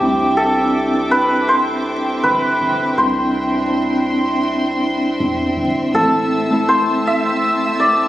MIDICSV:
0, 0, Header, 1, 5, 480
1, 0, Start_track
1, 0, Tempo, 740741
1, 7, Time_signature, 4, 2, 24, 8
1, 5238, End_track
2, 0, Start_track
2, 0, Title_t, "Violin section"
2, 0, Program_c, 0, 48
2, 0, Note_on_c, 0, 76, 60
2, 5, Note_on_c, 0, 79, 67
2, 6, Note_on_c, 0, 60, 70
2, 7, Note_on_c, 0, 86, 78
2, 1908, Note_off_c, 0, 86, 0
2, 1923, Note_on_c, 0, 84, 81
2, 3819, Note_off_c, 0, 76, 0
2, 3820, Note_off_c, 0, 79, 0
2, 3821, Note_off_c, 0, 60, 0
2, 3826, Note_off_c, 0, 84, 0
2, 3847, Note_on_c, 0, 88, 78
2, 3848, Note_on_c, 0, 81, 72
2, 3849, Note_on_c, 0, 60, 72
2, 3849, Note_on_c, 0, 76, 66
2, 5238, Note_off_c, 0, 60, 0
2, 5238, Note_off_c, 0, 76, 0
2, 5238, Note_off_c, 0, 81, 0
2, 5238, Note_off_c, 0, 88, 0
2, 5238, End_track
3, 0, Start_track
3, 0, Title_t, "Santur"
3, 0, Program_c, 1, 15
3, 0, Note_on_c, 1, 67, 90
3, 239, Note_on_c, 1, 69, 93
3, 721, Note_on_c, 1, 71, 109
3, 963, Note_on_c, 1, 72, 101
3, 1002, Note_off_c, 1, 71, 0
3, 1448, Note_on_c, 1, 71, 102
3, 1487, Note_off_c, 1, 72, 0
3, 1794, Note_off_c, 1, 67, 0
3, 1930, Note_on_c, 1, 72, 92
3, 1969, Note_off_c, 1, 71, 0
3, 2136, Note_off_c, 1, 69, 0
3, 3640, Note_off_c, 1, 72, 0
3, 3852, Note_on_c, 1, 69, 87
3, 4333, Note_on_c, 1, 72, 99
3, 4582, Note_on_c, 1, 76, 121
3, 5052, Note_on_c, 1, 74, 93
3, 5238, Note_off_c, 1, 69, 0
3, 5238, Note_off_c, 1, 72, 0
3, 5238, Note_off_c, 1, 74, 0
3, 5238, Note_off_c, 1, 76, 0
3, 5238, End_track
4, 0, Start_track
4, 0, Title_t, "Tine electric piano"
4, 0, Program_c, 2, 4
4, 0, Control_c, 2, 64, 127
4, 14, Note_on_c, 2, 60, 82
4, 16, Control_c, 2, 64, 0
4, 16, Note_on_c, 2, 62, 71
4, 21, Note_on_c, 2, 64, 89
4, 119, Control_c, 2, 64, 127
4, 348, Note_off_c, 2, 60, 0
4, 349, Note_off_c, 2, 62, 0
4, 351, Note_off_c, 2, 64, 0
4, 370, Note_on_c, 2, 60, 88
4, 383, Note_on_c, 2, 62, 76
4, 392, Note_on_c, 2, 64, 89
4, 1898, Note_off_c, 2, 60, 0
4, 1904, Note_off_c, 2, 62, 0
4, 1909, Note_off_c, 2, 64, 0
4, 1933, Note_on_c, 2, 60, 85
4, 1939, Note_on_c, 2, 62, 82
4, 1947, Note_on_c, 2, 64, 95
4, 2268, Note_off_c, 2, 60, 0
4, 2271, Note_off_c, 2, 62, 0
4, 2275, Note_off_c, 2, 64, 0
4, 2297, Note_on_c, 2, 60, 87
4, 2310, Note_on_c, 2, 62, 78
4, 2319, Note_on_c, 2, 64, 88
4, 3821, Note_off_c, 2, 60, 0
4, 3827, Note_off_c, 2, 62, 0
4, 3832, Note_off_c, 2, 64, 0
4, 3849, Note_on_c, 2, 57, 80
4, 3854, Note_on_c, 2, 60, 72
4, 3857, Control_c, 2, 64, 0
4, 3858, Note_on_c, 2, 64, 90
4, 3952, Control_c, 2, 64, 127
4, 4186, Note_off_c, 2, 57, 0
4, 4188, Note_off_c, 2, 60, 0
4, 4190, Note_off_c, 2, 64, 0
4, 4213, Note_on_c, 2, 57, 88
4, 4227, Note_on_c, 2, 60, 79
4, 4236, Note_on_c, 2, 64, 91
4, 5238, Note_off_c, 2, 57, 0
4, 5238, Note_off_c, 2, 60, 0
4, 5238, Note_off_c, 2, 64, 0
4, 5238, End_track
5, 0, Start_track
5, 0, Title_t, "808-style bass"
5, 0, Program_c, 3, 38
5, 3, Note_on_c, 3, 36, 89
5, 1424, Note_off_c, 3, 36, 0
5, 1447, Note_on_c, 3, 31, 96
5, 1660, Note_off_c, 3, 31, 0
5, 1690, Note_on_c, 3, 31, 95
5, 1902, Note_off_c, 3, 31, 0
5, 1930, Note_on_c, 3, 36, 90
5, 3347, Note_off_c, 3, 36, 0
5, 3370, Note_on_c, 3, 40, 102
5, 3581, Note_off_c, 3, 40, 0
5, 3606, Note_on_c, 3, 31, 113
5, 3820, Note_off_c, 3, 31, 0
5, 3846, Note_on_c, 3, 33, 95
5, 5238, Note_off_c, 3, 33, 0
5, 5238, End_track
0, 0, End_of_file